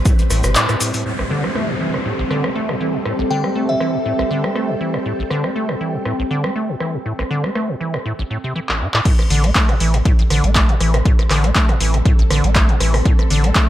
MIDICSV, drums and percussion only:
0, 0, Header, 1, 2, 480
1, 0, Start_track
1, 0, Key_signature, 0, "minor"
1, 0, Tempo, 500000
1, 1013, Time_signature, 4, 2, 24, 8
1, 13142, End_track
2, 0, Start_track
2, 0, Title_t, "Drums"
2, 52, Note_on_c, 9, 36, 119
2, 52, Note_on_c, 9, 42, 71
2, 52, Note_on_c, 9, 69, 56
2, 148, Note_off_c, 9, 36, 0
2, 148, Note_off_c, 9, 42, 0
2, 148, Note_off_c, 9, 69, 0
2, 180, Note_on_c, 9, 69, 28
2, 182, Note_on_c, 9, 42, 41
2, 276, Note_off_c, 9, 69, 0
2, 278, Note_off_c, 9, 42, 0
2, 291, Note_on_c, 9, 69, 88
2, 292, Note_on_c, 9, 37, 61
2, 292, Note_on_c, 9, 46, 104
2, 387, Note_off_c, 9, 69, 0
2, 388, Note_off_c, 9, 37, 0
2, 388, Note_off_c, 9, 46, 0
2, 417, Note_on_c, 9, 69, 38
2, 423, Note_on_c, 9, 37, 89
2, 423, Note_on_c, 9, 42, 58
2, 513, Note_off_c, 9, 69, 0
2, 519, Note_off_c, 9, 37, 0
2, 519, Note_off_c, 9, 42, 0
2, 531, Note_on_c, 9, 39, 124
2, 532, Note_on_c, 9, 42, 70
2, 533, Note_on_c, 9, 69, 59
2, 627, Note_off_c, 9, 39, 0
2, 628, Note_off_c, 9, 42, 0
2, 629, Note_off_c, 9, 69, 0
2, 662, Note_on_c, 9, 69, 29
2, 663, Note_on_c, 9, 37, 63
2, 663, Note_on_c, 9, 42, 40
2, 758, Note_off_c, 9, 69, 0
2, 759, Note_off_c, 9, 37, 0
2, 759, Note_off_c, 9, 42, 0
2, 773, Note_on_c, 9, 46, 102
2, 774, Note_on_c, 9, 69, 94
2, 869, Note_off_c, 9, 46, 0
2, 870, Note_off_c, 9, 69, 0
2, 899, Note_on_c, 9, 69, 39
2, 903, Note_on_c, 9, 46, 61
2, 995, Note_off_c, 9, 69, 0
2, 999, Note_off_c, 9, 46, 0
2, 1143, Note_on_c, 9, 37, 53
2, 1239, Note_off_c, 9, 37, 0
2, 1383, Note_on_c, 9, 37, 62
2, 1479, Note_off_c, 9, 37, 0
2, 1493, Note_on_c, 9, 37, 55
2, 1589, Note_off_c, 9, 37, 0
2, 1864, Note_on_c, 9, 37, 56
2, 1960, Note_off_c, 9, 37, 0
2, 2213, Note_on_c, 9, 37, 53
2, 2309, Note_off_c, 9, 37, 0
2, 2343, Note_on_c, 9, 37, 82
2, 2439, Note_off_c, 9, 37, 0
2, 2583, Note_on_c, 9, 37, 56
2, 2679, Note_off_c, 9, 37, 0
2, 2933, Note_on_c, 9, 37, 57
2, 3029, Note_off_c, 9, 37, 0
2, 3303, Note_on_c, 9, 37, 60
2, 3399, Note_off_c, 9, 37, 0
2, 3653, Note_on_c, 9, 37, 54
2, 3749, Note_off_c, 9, 37, 0
2, 4023, Note_on_c, 9, 37, 56
2, 4119, Note_off_c, 9, 37, 0
2, 4263, Note_on_c, 9, 37, 76
2, 4359, Note_off_c, 9, 37, 0
2, 4373, Note_on_c, 9, 37, 54
2, 4469, Note_off_c, 9, 37, 0
2, 4743, Note_on_c, 9, 37, 55
2, 4839, Note_off_c, 9, 37, 0
2, 5093, Note_on_c, 9, 37, 56
2, 5189, Note_off_c, 9, 37, 0
2, 5223, Note_on_c, 9, 37, 60
2, 5319, Note_off_c, 9, 37, 0
2, 5462, Note_on_c, 9, 37, 54
2, 5558, Note_off_c, 9, 37, 0
2, 5812, Note_on_c, 9, 37, 55
2, 5908, Note_off_c, 9, 37, 0
2, 6183, Note_on_c, 9, 37, 76
2, 6279, Note_off_c, 9, 37, 0
2, 6532, Note_on_c, 9, 37, 57
2, 6628, Note_off_c, 9, 37, 0
2, 6902, Note_on_c, 9, 37, 58
2, 6998, Note_off_c, 9, 37, 0
2, 7142, Note_on_c, 9, 37, 61
2, 7238, Note_off_c, 9, 37, 0
2, 7252, Note_on_c, 9, 37, 59
2, 7348, Note_off_c, 9, 37, 0
2, 7622, Note_on_c, 9, 37, 59
2, 7718, Note_off_c, 9, 37, 0
2, 8342, Note_on_c, 9, 39, 74
2, 8438, Note_off_c, 9, 39, 0
2, 8582, Note_on_c, 9, 39, 97
2, 8678, Note_off_c, 9, 39, 0
2, 8692, Note_on_c, 9, 36, 124
2, 8692, Note_on_c, 9, 42, 72
2, 8692, Note_on_c, 9, 49, 107
2, 8788, Note_off_c, 9, 36, 0
2, 8788, Note_off_c, 9, 42, 0
2, 8788, Note_off_c, 9, 49, 0
2, 8822, Note_on_c, 9, 37, 57
2, 8822, Note_on_c, 9, 42, 39
2, 8918, Note_off_c, 9, 37, 0
2, 8918, Note_off_c, 9, 42, 0
2, 8932, Note_on_c, 9, 46, 105
2, 9028, Note_off_c, 9, 46, 0
2, 9062, Note_on_c, 9, 37, 38
2, 9062, Note_on_c, 9, 42, 56
2, 9158, Note_off_c, 9, 37, 0
2, 9158, Note_off_c, 9, 42, 0
2, 9171, Note_on_c, 9, 39, 127
2, 9172, Note_on_c, 9, 36, 107
2, 9172, Note_on_c, 9, 42, 74
2, 9267, Note_off_c, 9, 39, 0
2, 9268, Note_off_c, 9, 36, 0
2, 9268, Note_off_c, 9, 42, 0
2, 9302, Note_on_c, 9, 37, 56
2, 9302, Note_on_c, 9, 42, 38
2, 9398, Note_off_c, 9, 37, 0
2, 9398, Note_off_c, 9, 42, 0
2, 9412, Note_on_c, 9, 46, 108
2, 9508, Note_off_c, 9, 46, 0
2, 9542, Note_on_c, 9, 37, 39
2, 9542, Note_on_c, 9, 42, 57
2, 9638, Note_off_c, 9, 37, 0
2, 9638, Note_off_c, 9, 42, 0
2, 9652, Note_on_c, 9, 36, 121
2, 9652, Note_on_c, 9, 42, 70
2, 9748, Note_off_c, 9, 36, 0
2, 9748, Note_off_c, 9, 42, 0
2, 9782, Note_on_c, 9, 42, 39
2, 9878, Note_off_c, 9, 42, 0
2, 9892, Note_on_c, 9, 37, 57
2, 9892, Note_on_c, 9, 46, 105
2, 9988, Note_off_c, 9, 37, 0
2, 9988, Note_off_c, 9, 46, 0
2, 10022, Note_on_c, 9, 42, 58
2, 10118, Note_off_c, 9, 42, 0
2, 10131, Note_on_c, 9, 39, 127
2, 10132, Note_on_c, 9, 36, 109
2, 10132, Note_on_c, 9, 37, 38
2, 10132, Note_on_c, 9, 42, 70
2, 10227, Note_off_c, 9, 39, 0
2, 10228, Note_off_c, 9, 36, 0
2, 10228, Note_off_c, 9, 37, 0
2, 10228, Note_off_c, 9, 42, 0
2, 10263, Note_on_c, 9, 42, 40
2, 10359, Note_off_c, 9, 42, 0
2, 10373, Note_on_c, 9, 37, 60
2, 10373, Note_on_c, 9, 46, 108
2, 10469, Note_off_c, 9, 37, 0
2, 10469, Note_off_c, 9, 46, 0
2, 10503, Note_on_c, 9, 37, 85
2, 10503, Note_on_c, 9, 42, 54
2, 10599, Note_off_c, 9, 37, 0
2, 10599, Note_off_c, 9, 42, 0
2, 10612, Note_on_c, 9, 36, 122
2, 10613, Note_on_c, 9, 42, 68
2, 10708, Note_off_c, 9, 36, 0
2, 10709, Note_off_c, 9, 42, 0
2, 10743, Note_on_c, 9, 37, 58
2, 10743, Note_on_c, 9, 42, 39
2, 10839, Note_off_c, 9, 37, 0
2, 10839, Note_off_c, 9, 42, 0
2, 10851, Note_on_c, 9, 39, 64
2, 10853, Note_on_c, 9, 37, 82
2, 10853, Note_on_c, 9, 46, 110
2, 10947, Note_off_c, 9, 39, 0
2, 10949, Note_off_c, 9, 37, 0
2, 10949, Note_off_c, 9, 46, 0
2, 10983, Note_on_c, 9, 37, 38
2, 10983, Note_on_c, 9, 42, 54
2, 11079, Note_off_c, 9, 37, 0
2, 11079, Note_off_c, 9, 42, 0
2, 11091, Note_on_c, 9, 39, 127
2, 11093, Note_on_c, 9, 36, 111
2, 11093, Note_on_c, 9, 42, 71
2, 11187, Note_off_c, 9, 39, 0
2, 11189, Note_off_c, 9, 36, 0
2, 11189, Note_off_c, 9, 42, 0
2, 11223, Note_on_c, 9, 37, 56
2, 11223, Note_on_c, 9, 42, 37
2, 11319, Note_off_c, 9, 37, 0
2, 11319, Note_off_c, 9, 42, 0
2, 11333, Note_on_c, 9, 46, 112
2, 11429, Note_off_c, 9, 46, 0
2, 11463, Note_on_c, 9, 37, 39
2, 11463, Note_on_c, 9, 42, 56
2, 11559, Note_off_c, 9, 37, 0
2, 11559, Note_off_c, 9, 42, 0
2, 11573, Note_on_c, 9, 36, 127
2, 11573, Note_on_c, 9, 42, 67
2, 11669, Note_off_c, 9, 36, 0
2, 11669, Note_off_c, 9, 42, 0
2, 11703, Note_on_c, 9, 42, 39
2, 11799, Note_off_c, 9, 42, 0
2, 11813, Note_on_c, 9, 37, 80
2, 11813, Note_on_c, 9, 46, 109
2, 11909, Note_off_c, 9, 37, 0
2, 11909, Note_off_c, 9, 46, 0
2, 11943, Note_on_c, 9, 42, 54
2, 12039, Note_off_c, 9, 42, 0
2, 12051, Note_on_c, 9, 39, 126
2, 12053, Note_on_c, 9, 36, 115
2, 12053, Note_on_c, 9, 37, 39
2, 12053, Note_on_c, 9, 42, 68
2, 12147, Note_off_c, 9, 39, 0
2, 12149, Note_off_c, 9, 36, 0
2, 12149, Note_off_c, 9, 37, 0
2, 12149, Note_off_c, 9, 42, 0
2, 12183, Note_on_c, 9, 42, 39
2, 12279, Note_off_c, 9, 42, 0
2, 12293, Note_on_c, 9, 37, 59
2, 12293, Note_on_c, 9, 46, 110
2, 12389, Note_off_c, 9, 37, 0
2, 12389, Note_off_c, 9, 46, 0
2, 12423, Note_on_c, 9, 37, 83
2, 12423, Note_on_c, 9, 46, 66
2, 12519, Note_off_c, 9, 37, 0
2, 12519, Note_off_c, 9, 46, 0
2, 12533, Note_on_c, 9, 36, 127
2, 12533, Note_on_c, 9, 42, 64
2, 12629, Note_off_c, 9, 36, 0
2, 12629, Note_off_c, 9, 42, 0
2, 12663, Note_on_c, 9, 37, 59
2, 12663, Note_on_c, 9, 42, 36
2, 12759, Note_off_c, 9, 37, 0
2, 12759, Note_off_c, 9, 42, 0
2, 12772, Note_on_c, 9, 46, 109
2, 12868, Note_off_c, 9, 46, 0
2, 12903, Note_on_c, 9, 37, 39
2, 12903, Note_on_c, 9, 42, 51
2, 12999, Note_off_c, 9, 37, 0
2, 12999, Note_off_c, 9, 42, 0
2, 13010, Note_on_c, 9, 39, 126
2, 13012, Note_on_c, 9, 42, 66
2, 13013, Note_on_c, 9, 36, 115
2, 13106, Note_off_c, 9, 39, 0
2, 13108, Note_off_c, 9, 42, 0
2, 13109, Note_off_c, 9, 36, 0
2, 13142, End_track
0, 0, End_of_file